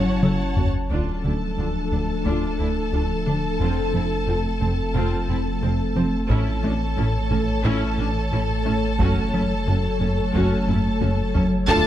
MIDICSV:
0, 0, Header, 1, 14, 480
1, 0, Start_track
1, 0, Tempo, 674157
1, 646, Time_signature, 4, 2, 24, 8
1, 8451, End_track
2, 0, Start_track
2, 0, Title_t, "Violin section"
2, 0, Program_c, 0, 48
2, 0, Note_on_c, 0, 73, 57
2, 169, Note_off_c, 0, 73, 0
2, 8322, Note_on_c, 0, 93, 93
2, 8451, Note_off_c, 0, 93, 0
2, 8451, End_track
3, 0, Start_track
3, 0, Title_t, "Violin section"
3, 0, Program_c, 1, 48
3, 0, Note_on_c, 1, 78, 43
3, 0, Note_on_c, 1, 81, 63
3, 480, Note_off_c, 1, 81, 0
3, 503, Note_off_c, 1, 78, 0
3, 644, Note_on_c, 1, 69, 35
3, 646, Note_on_c, 1, 81, 37
3, 4457, Note_off_c, 1, 69, 0
3, 4458, Note_off_c, 1, 81, 0
3, 4482, Note_on_c, 1, 69, 53
3, 4483, Note_on_c, 1, 81, 51
3, 8153, Note_off_c, 1, 69, 0
3, 8154, Note_off_c, 1, 81, 0
3, 8323, Note_on_c, 1, 69, 77
3, 8324, Note_on_c, 1, 81, 85
3, 8451, Note_off_c, 1, 69, 0
3, 8451, Note_off_c, 1, 81, 0
3, 8451, End_track
4, 0, Start_track
4, 0, Title_t, "French horn section"
4, 0, Program_c, 2, 60
4, 0, Note_on_c, 2, 64, 60
4, 0, Note_on_c, 2, 73, 60
4, 391, Note_off_c, 2, 64, 0
4, 420, Note_off_c, 2, 73, 0
4, 8325, Note_on_c, 2, 57, 79
4, 8451, Note_off_c, 2, 57, 0
4, 8451, End_track
5, 0, Start_track
5, 0, Title_t, "Viola section"
5, 0, Program_c, 3, 48
5, 0, Note_on_c, 3, 73, 59
5, 167, Note_on_c, 3, 69, 42
5, 224, Note_off_c, 3, 69, 0
5, 406, Note_on_c, 3, 66, 38
5, 463, Note_off_c, 3, 66, 0
5, 477, Note_off_c, 3, 73, 0
5, 645, Note_on_c, 3, 62, 43
5, 645, Note_on_c, 3, 65, 39
5, 869, Note_off_c, 3, 62, 0
5, 869, Note_off_c, 3, 65, 0
5, 886, Note_on_c, 3, 64, 29
5, 887, Note_on_c, 3, 62, 30
5, 943, Note_off_c, 3, 64, 0
5, 944, Note_off_c, 3, 62, 0
5, 1129, Note_on_c, 3, 62, 34
5, 1130, Note_on_c, 3, 65, 30
5, 1186, Note_off_c, 3, 62, 0
5, 1187, Note_off_c, 3, 65, 0
5, 1373, Note_on_c, 3, 62, 27
5, 1375, Note_off_c, 3, 62, 0
5, 1375, Note_on_c, 3, 62, 26
5, 1431, Note_off_c, 3, 62, 0
5, 1610, Note_on_c, 3, 62, 45
5, 1612, Note_on_c, 3, 65, 45
5, 1832, Note_off_c, 3, 62, 0
5, 1833, Note_off_c, 3, 65, 0
5, 1847, Note_on_c, 3, 62, 37
5, 1850, Note_on_c, 3, 64, 35
5, 1904, Note_off_c, 3, 62, 0
5, 1907, Note_off_c, 3, 64, 0
5, 2088, Note_on_c, 3, 62, 40
5, 2090, Note_on_c, 3, 65, 35
5, 2145, Note_off_c, 3, 62, 0
5, 2147, Note_off_c, 3, 65, 0
5, 2329, Note_on_c, 3, 62, 43
5, 2332, Note_off_c, 3, 62, 0
5, 2332, Note_on_c, 3, 62, 42
5, 2388, Note_off_c, 3, 62, 0
5, 2566, Note_on_c, 3, 65, 44
5, 2568, Note_on_c, 3, 60, 47
5, 2790, Note_off_c, 3, 65, 0
5, 2791, Note_off_c, 3, 60, 0
5, 2806, Note_on_c, 3, 60, 35
5, 2807, Note_on_c, 3, 64, 36
5, 2863, Note_off_c, 3, 60, 0
5, 2864, Note_off_c, 3, 64, 0
5, 3044, Note_on_c, 3, 65, 40
5, 3045, Note_on_c, 3, 60, 39
5, 3101, Note_off_c, 3, 65, 0
5, 3102, Note_off_c, 3, 60, 0
5, 3284, Note_on_c, 3, 60, 35
5, 3341, Note_off_c, 3, 60, 0
5, 3525, Note_on_c, 3, 65, 53
5, 3526, Note_on_c, 3, 60, 48
5, 3749, Note_off_c, 3, 60, 0
5, 3749, Note_off_c, 3, 65, 0
5, 3766, Note_on_c, 3, 60, 44
5, 3769, Note_on_c, 3, 64, 46
5, 3823, Note_off_c, 3, 60, 0
5, 3826, Note_off_c, 3, 64, 0
5, 4007, Note_on_c, 3, 60, 48
5, 4008, Note_on_c, 3, 65, 46
5, 4064, Note_off_c, 3, 60, 0
5, 4065, Note_off_c, 3, 65, 0
5, 4245, Note_on_c, 3, 60, 50
5, 4302, Note_off_c, 3, 60, 0
5, 4484, Note_on_c, 3, 61, 51
5, 4485, Note_on_c, 3, 64, 58
5, 4709, Note_off_c, 3, 61, 0
5, 4709, Note_off_c, 3, 64, 0
5, 4724, Note_on_c, 3, 62, 43
5, 4725, Note_on_c, 3, 61, 43
5, 4781, Note_off_c, 3, 62, 0
5, 4782, Note_off_c, 3, 61, 0
5, 4966, Note_on_c, 3, 61, 51
5, 4969, Note_on_c, 3, 64, 46
5, 5023, Note_off_c, 3, 61, 0
5, 5026, Note_off_c, 3, 64, 0
5, 5204, Note_on_c, 3, 61, 43
5, 5261, Note_off_c, 3, 61, 0
5, 5446, Note_on_c, 3, 61, 69
5, 5446, Note_on_c, 3, 64, 68
5, 5669, Note_off_c, 3, 61, 0
5, 5669, Note_off_c, 3, 64, 0
5, 5687, Note_on_c, 3, 61, 42
5, 5687, Note_on_c, 3, 62, 46
5, 5744, Note_off_c, 3, 61, 0
5, 5744, Note_off_c, 3, 62, 0
5, 5928, Note_on_c, 3, 61, 50
5, 5928, Note_on_c, 3, 64, 43
5, 5985, Note_off_c, 3, 61, 0
5, 5985, Note_off_c, 3, 64, 0
5, 6162, Note_on_c, 3, 61, 47
5, 6164, Note_off_c, 3, 61, 0
5, 6164, Note_on_c, 3, 61, 47
5, 6221, Note_off_c, 3, 61, 0
5, 6409, Note_on_c, 3, 61, 51
5, 6409, Note_on_c, 3, 66, 50
5, 6631, Note_off_c, 3, 61, 0
5, 6631, Note_off_c, 3, 66, 0
5, 6646, Note_on_c, 3, 61, 34
5, 6647, Note_on_c, 3, 64, 38
5, 6703, Note_off_c, 3, 61, 0
5, 6704, Note_off_c, 3, 64, 0
5, 6886, Note_on_c, 3, 61, 33
5, 6887, Note_on_c, 3, 66, 37
5, 6943, Note_off_c, 3, 61, 0
5, 6944, Note_off_c, 3, 66, 0
5, 7124, Note_on_c, 3, 61, 29
5, 7125, Note_off_c, 3, 61, 0
5, 7125, Note_on_c, 3, 61, 31
5, 7182, Note_off_c, 3, 61, 0
5, 7365, Note_on_c, 3, 61, 54
5, 7366, Note_on_c, 3, 66, 49
5, 7589, Note_off_c, 3, 61, 0
5, 7589, Note_off_c, 3, 66, 0
5, 7605, Note_on_c, 3, 64, 36
5, 7607, Note_on_c, 3, 61, 35
5, 7661, Note_off_c, 3, 64, 0
5, 7664, Note_off_c, 3, 61, 0
5, 7838, Note_on_c, 3, 66, 40
5, 7840, Note_on_c, 3, 61, 38
5, 7895, Note_off_c, 3, 66, 0
5, 7897, Note_off_c, 3, 61, 0
5, 8079, Note_on_c, 3, 61, 49
5, 8080, Note_off_c, 3, 61, 0
5, 8080, Note_on_c, 3, 61, 44
5, 8137, Note_off_c, 3, 61, 0
5, 8318, Note_on_c, 3, 62, 69
5, 8320, Note_on_c, 3, 65, 77
5, 8451, Note_off_c, 3, 62, 0
5, 8451, Note_off_c, 3, 65, 0
5, 8451, End_track
6, 0, Start_track
6, 0, Title_t, "Ambient pad"
6, 0, Program_c, 4, 92
6, 0, Note_on_c, 4, 54, 52
6, 0, Note_on_c, 4, 61, 65
6, 0, Note_on_c, 4, 81, 65
6, 620, Note_off_c, 4, 81, 0
6, 645, Note_off_c, 4, 54, 0
6, 648, Note_on_c, 4, 62, 49
6, 649, Note_off_c, 4, 61, 0
6, 649, Note_on_c, 4, 53, 45
6, 649, Note_on_c, 4, 57, 45
6, 649, Note_on_c, 4, 69, 54
6, 2539, Note_off_c, 4, 62, 0
6, 2570, Note_on_c, 4, 60, 46
6, 4459, Note_off_c, 4, 53, 0
6, 4459, Note_off_c, 4, 57, 0
6, 4459, Note_off_c, 4, 69, 0
6, 4484, Note_on_c, 4, 57, 58
6, 4484, Note_on_c, 4, 69, 59
6, 4484, Note_on_c, 4, 73, 58
6, 4485, Note_on_c, 4, 52, 60
6, 4488, Note_off_c, 4, 60, 0
6, 6406, Note_off_c, 4, 52, 0
6, 6406, Note_on_c, 4, 54, 50
6, 8297, Note_off_c, 4, 57, 0
6, 8297, Note_off_c, 4, 69, 0
6, 8325, Note_off_c, 4, 73, 0
6, 8325, Note_on_c, 4, 57, 79
6, 8326, Note_off_c, 4, 54, 0
6, 8327, Note_on_c, 4, 69, 79
6, 8329, Note_on_c, 4, 53, 80
6, 8329, Note_on_c, 4, 62, 77
6, 8451, Note_off_c, 4, 53, 0
6, 8451, Note_off_c, 4, 57, 0
6, 8451, Note_off_c, 4, 62, 0
6, 8451, Note_off_c, 4, 69, 0
6, 8451, End_track
7, 0, Start_track
7, 0, Title_t, "Trombone section"
7, 0, Program_c, 5, 61
7, 8324, Note_on_c, 5, 53, 88
7, 8324, Note_on_c, 5, 65, 77
7, 8451, Note_off_c, 5, 53, 0
7, 8451, Note_off_c, 5, 65, 0
7, 8451, End_track
8, 0, Start_track
8, 0, Title_t, "Analog synth bass"
8, 0, Program_c, 6, 38
8, 163, Note_on_c, 6, 54, 56
8, 308, Note_off_c, 6, 54, 0
8, 402, Note_on_c, 6, 42, 48
8, 548, Note_off_c, 6, 42, 0
8, 647, Note_on_c, 6, 38, 63
8, 791, Note_off_c, 6, 38, 0
8, 886, Note_on_c, 6, 50, 47
8, 1030, Note_off_c, 6, 50, 0
8, 1124, Note_on_c, 6, 38, 53
8, 1268, Note_off_c, 6, 38, 0
8, 1366, Note_on_c, 6, 38, 50
8, 1510, Note_off_c, 6, 38, 0
8, 1606, Note_on_c, 6, 38, 61
8, 1750, Note_off_c, 6, 38, 0
8, 1846, Note_on_c, 6, 38, 40
8, 1990, Note_off_c, 6, 38, 0
8, 2085, Note_on_c, 6, 38, 49
8, 2230, Note_off_c, 6, 38, 0
8, 2329, Note_on_c, 6, 50, 51
8, 2472, Note_off_c, 6, 50, 0
8, 2563, Note_on_c, 6, 41, 67
8, 2708, Note_off_c, 6, 41, 0
8, 2807, Note_on_c, 6, 53, 49
8, 2951, Note_off_c, 6, 53, 0
8, 3040, Note_on_c, 6, 41, 51
8, 3186, Note_off_c, 6, 41, 0
8, 3282, Note_on_c, 6, 41, 58
8, 3427, Note_off_c, 6, 41, 0
8, 3525, Note_on_c, 6, 41, 63
8, 3670, Note_off_c, 6, 41, 0
8, 3764, Note_on_c, 6, 41, 40
8, 3909, Note_off_c, 6, 41, 0
8, 4005, Note_on_c, 6, 41, 51
8, 4149, Note_off_c, 6, 41, 0
8, 4246, Note_on_c, 6, 53, 53
8, 4390, Note_off_c, 6, 53, 0
8, 4484, Note_on_c, 6, 45, 72
8, 4629, Note_off_c, 6, 45, 0
8, 4727, Note_on_c, 6, 57, 56
8, 4871, Note_off_c, 6, 57, 0
8, 4966, Note_on_c, 6, 45, 53
8, 5110, Note_off_c, 6, 45, 0
8, 5204, Note_on_c, 6, 45, 52
8, 5349, Note_off_c, 6, 45, 0
8, 5443, Note_on_c, 6, 45, 71
8, 5588, Note_off_c, 6, 45, 0
8, 5683, Note_on_c, 6, 45, 49
8, 5828, Note_off_c, 6, 45, 0
8, 5924, Note_on_c, 6, 45, 51
8, 6069, Note_off_c, 6, 45, 0
8, 6164, Note_on_c, 6, 57, 50
8, 6309, Note_off_c, 6, 57, 0
8, 6404, Note_on_c, 6, 42, 72
8, 6549, Note_off_c, 6, 42, 0
8, 6649, Note_on_c, 6, 54, 54
8, 6792, Note_off_c, 6, 54, 0
8, 6889, Note_on_c, 6, 42, 57
8, 7032, Note_off_c, 6, 42, 0
8, 7126, Note_on_c, 6, 42, 54
8, 7270, Note_off_c, 6, 42, 0
8, 7371, Note_on_c, 6, 42, 67
8, 7514, Note_off_c, 6, 42, 0
8, 7610, Note_on_c, 6, 42, 44
8, 7753, Note_off_c, 6, 42, 0
8, 7850, Note_on_c, 6, 42, 52
8, 7993, Note_off_c, 6, 42, 0
8, 8088, Note_on_c, 6, 54, 51
8, 8231, Note_off_c, 6, 54, 0
8, 8329, Note_on_c, 6, 38, 108
8, 8451, Note_off_c, 6, 38, 0
8, 8451, End_track
9, 0, Start_track
9, 0, Title_t, "Cello section"
9, 0, Program_c, 7, 48
9, 0, Note_on_c, 7, 61, 56
9, 167, Note_off_c, 7, 61, 0
9, 645, Note_on_c, 7, 38, 37
9, 702, Note_off_c, 7, 38, 0
9, 886, Note_on_c, 7, 38, 30
9, 943, Note_off_c, 7, 38, 0
9, 1127, Note_on_c, 7, 38, 27
9, 1184, Note_off_c, 7, 38, 0
9, 1368, Note_on_c, 7, 38, 33
9, 1425, Note_off_c, 7, 38, 0
9, 1606, Note_on_c, 7, 38, 47
9, 1663, Note_off_c, 7, 38, 0
9, 1846, Note_on_c, 7, 38, 30
9, 1903, Note_off_c, 7, 38, 0
9, 2089, Note_on_c, 7, 38, 31
9, 2146, Note_off_c, 7, 38, 0
9, 2330, Note_on_c, 7, 38, 38
9, 2387, Note_off_c, 7, 38, 0
9, 2569, Note_on_c, 7, 41, 47
9, 2626, Note_off_c, 7, 41, 0
9, 2808, Note_on_c, 7, 41, 36
9, 2865, Note_off_c, 7, 41, 0
9, 3048, Note_on_c, 7, 41, 39
9, 3104, Note_off_c, 7, 41, 0
9, 3287, Note_on_c, 7, 41, 41
9, 3344, Note_off_c, 7, 41, 0
9, 3526, Note_on_c, 7, 41, 64
9, 3583, Note_off_c, 7, 41, 0
9, 3765, Note_on_c, 7, 41, 36
9, 3822, Note_off_c, 7, 41, 0
9, 4006, Note_on_c, 7, 41, 45
9, 4062, Note_off_c, 7, 41, 0
9, 4245, Note_on_c, 7, 41, 48
9, 4302, Note_off_c, 7, 41, 0
9, 4484, Note_on_c, 7, 45, 58
9, 4541, Note_off_c, 7, 45, 0
9, 4725, Note_on_c, 7, 45, 46
9, 4782, Note_off_c, 7, 45, 0
9, 4961, Note_on_c, 7, 45, 47
9, 5018, Note_off_c, 7, 45, 0
9, 5205, Note_on_c, 7, 45, 49
9, 5262, Note_off_c, 7, 45, 0
9, 5444, Note_on_c, 7, 45, 69
9, 5501, Note_off_c, 7, 45, 0
9, 5685, Note_on_c, 7, 45, 44
9, 5742, Note_off_c, 7, 45, 0
9, 5926, Note_on_c, 7, 45, 43
9, 5983, Note_off_c, 7, 45, 0
9, 6166, Note_on_c, 7, 45, 43
9, 6223, Note_off_c, 7, 45, 0
9, 6406, Note_on_c, 7, 42, 50
9, 6463, Note_off_c, 7, 42, 0
9, 6648, Note_on_c, 7, 42, 41
9, 6705, Note_off_c, 7, 42, 0
9, 6886, Note_on_c, 7, 42, 34
9, 6943, Note_off_c, 7, 42, 0
9, 7127, Note_on_c, 7, 42, 37
9, 7184, Note_off_c, 7, 42, 0
9, 7366, Note_on_c, 7, 42, 52
9, 7423, Note_off_c, 7, 42, 0
9, 7605, Note_on_c, 7, 42, 36
9, 7662, Note_off_c, 7, 42, 0
9, 7845, Note_on_c, 7, 42, 35
9, 7902, Note_off_c, 7, 42, 0
9, 8086, Note_on_c, 7, 42, 39
9, 8143, Note_off_c, 7, 42, 0
9, 8323, Note_on_c, 7, 38, 84
9, 8380, Note_off_c, 7, 38, 0
9, 8451, End_track
10, 0, Start_track
10, 0, Title_t, "Tuba"
10, 0, Program_c, 8, 58
10, 8323, Note_on_c, 8, 38, 89
10, 8420, Note_off_c, 8, 38, 0
10, 8451, End_track
11, 0, Start_track
11, 0, Title_t, "Double bass section"
11, 0, Program_c, 10, 48
11, 162, Note_on_c, 10, 30, 41
11, 219, Note_off_c, 10, 30, 0
11, 406, Note_on_c, 10, 30, 31
11, 463, Note_off_c, 10, 30, 0
11, 640, Note_on_c, 10, 38, 41
11, 697, Note_off_c, 10, 38, 0
11, 884, Note_on_c, 10, 38, 33
11, 941, Note_off_c, 10, 38, 0
11, 1124, Note_on_c, 10, 38, 34
11, 1181, Note_off_c, 10, 38, 0
11, 1365, Note_on_c, 10, 38, 37
11, 1422, Note_off_c, 10, 38, 0
11, 1608, Note_on_c, 10, 38, 50
11, 1665, Note_off_c, 10, 38, 0
11, 1846, Note_on_c, 10, 38, 30
11, 1903, Note_off_c, 10, 38, 0
11, 2091, Note_on_c, 10, 38, 36
11, 2147, Note_off_c, 10, 38, 0
11, 2326, Note_on_c, 10, 38, 32
11, 2383, Note_off_c, 10, 38, 0
11, 2567, Note_on_c, 10, 29, 43
11, 2624, Note_off_c, 10, 29, 0
11, 2805, Note_on_c, 10, 29, 37
11, 2862, Note_off_c, 10, 29, 0
11, 3047, Note_on_c, 10, 29, 40
11, 3104, Note_off_c, 10, 29, 0
11, 3289, Note_on_c, 10, 29, 43
11, 3346, Note_off_c, 10, 29, 0
11, 3526, Note_on_c, 10, 29, 55
11, 3583, Note_off_c, 10, 29, 0
11, 3765, Note_on_c, 10, 29, 35
11, 3822, Note_off_c, 10, 29, 0
11, 4006, Note_on_c, 10, 29, 46
11, 4063, Note_off_c, 10, 29, 0
11, 4248, Note_on_c, 10, 29, 45
11, 4304, Note_off_c, 10, 29, 0
11, 4485, Note_on_c, 10, 33, 63
11, 4542, Note_off_c, 10, 33, 0
11, 4729, Note_on_c, 10, 33, 41
11, 4786, Note_off_c, 10, 33, 0
11, 4969, Note_on_c, 10, 33, 44
11, 5026, Note_off_c, 10, 33, 0
11, 5208, Note_on_c, 10, 33, 51
11, 5265, Note_off_c, 10, 33, 0
11, 5450, Note_on_c, 10, 33, 63
11, 5507, Note_off_c, 10, 33, 0
11, 5687, Note_on_c, 10, 33, 46
11, 5744, Note_off_c, 10, 33, 0
11, 5929, Note_on_c, 10, 33, 44
11, 5986, Note_off_c, 10, 33, 0
11, 6165, Note_on_c, 10, 33, 39
11, 6222, Note_off_c, 10, 33, 0
11, 6404, Note_on_c, 10, 30, 48
11, 6461, Note_off_c, 10, 30, 0
11, 6644, Note_on_c, 10, 30, 38
11, 6701, Note_off_c, 10, 30, 0
11, 6884, Note_on_c, 10, 30, 37
11, 6941, Note_off_c, 10, 30, 0
11, 7119, Note_on_c, 10, 30, 36
11, 7176, Note_off_c, 10, 30, 0
11, 7360, Note_on_c, 10, 30, 47
11, 7417, Note_off_c, 10, 30, 0
11, 7603, Note_on_c, 10, 30, 38
11, 7660, Note_off_c, 10, 30, 0
11, 7842, Note_on_c, 10, 30, 42
11, 7899, Note_off_c, 10, 30, 0
11, 8087, Note_on_c, 10, 30, 36
11, 8144, Note_off_c, 10, 30, 0
11, 8325, Note_on_c, 10, 38, 82
11, 8382, Note_off_c, 10, 38, 0
11, 8451, End_track
12, 0, Start_track
12, 0, Title_t, "Sub bass"
12, 0, Program_c, 11, 38
12, 0, Note_on_c, 11, 30, 66
12, 642, Note_off_c, 11, 30, 0
12, 646, Note_on_c, 11, 26, 54
12, 2569, Note_on_c, 11, 29, 56
12, 2579, Note_off_c, 11, 26, 0
12, 4486, Note_on_c, 11, 33, 58
12, 4497, Note_off_c, 11, 29, 0
12, 6407, Note_on_c, 11, 30, 59
12, 6418, Note_off_c, 11, 33, 0
12, 8321, Note_off_c, 11, 30, 0
12, 8325, Note_on_c, 11, 26, 81
12, 8451, Note_off_c, 11, 26, 0
12, 8451, End_track
13, 0, Start_track
13, 0, Title_t, "Sub drop"
13, 0, Program_c, 12, 103
13, 8325, Note_on_c, 12, 60, 82
13, 8451, Note_off_c, 12, 60, 0
13, 8451, End_track
14, 0, Start_track
14, 0, Title_t, "Taiko and cinematic ensemble drums"
14, 162, Note_on_c, 9, 47, 77
14, 233, Note_off_c, 9, 47, 0
14, 403, Note_on_c, 9, 43, 82
14, 475, Note_off_c, 9, 43, 0
14, 643, Note_on_c, 9, 41, 38
14, 714, Note_off_c, 9, 41, 0
14, 4483, Note_on_c, 9, 41, 55
14, 4554, Note_off_c, 9, 41, 0
14, 5204, Note_on_c, 9, 41, 37
14, 5275, Note_off_c, 9, 41, 0
14, 6403, Note_on_c, 9, 41, 85
14, 6474, Note_off_c, 9, 41, 0
14, 7361, Note_on_c, 9, 41, 61
14, 7432, Note_off_c, 9, 41, 0
14, 7604, Note_on_c, 9, 45, 64
14, 7675, Note_off_c, 9, 45, 0
14, 7842, Note_on_c, 9, 48, 82
14, 7913, Note_off_c, 9, 48, 0
14, 8081, Note_on_c, 9, 43, 75
14, 8152, Note_off_c, 9, 43, 0
14, 8323, Note_on_c, 9, 41, 97
14, 8394, Note_off_c, 9, 41, 0
14, 8451, End_track
0, 0, End_of_file